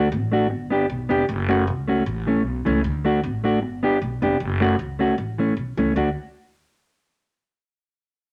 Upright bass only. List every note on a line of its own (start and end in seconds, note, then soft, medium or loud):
0.00 0.13 D2 loud
0.12 0.51 A1 loud
0.51 0.84 G1 loud
0.90 1.07 B1 loud
1.11 1.26 F1 medium
1.29 1.69 F#1 loud
1.67 2.00 C#2 loud
2.06 2.46 A1 loud
2.46 2.63 B1 medium
2.66 2.81 C#2 medium
2.84 3.25 D2 loud
3.24 3.62 A1 loud
3.62 3.95 G1 medium
4.02 4.19 B1 medium
4.22 4.37 F1 medium
4.40 4.73 F#1 loud
4.79 5.12 C#2 loud
5.18 5.51 A1 medium
5.57 5.74 B1 medium
5.77 5.93 C#2 medium
5.96 6.15 D2 loud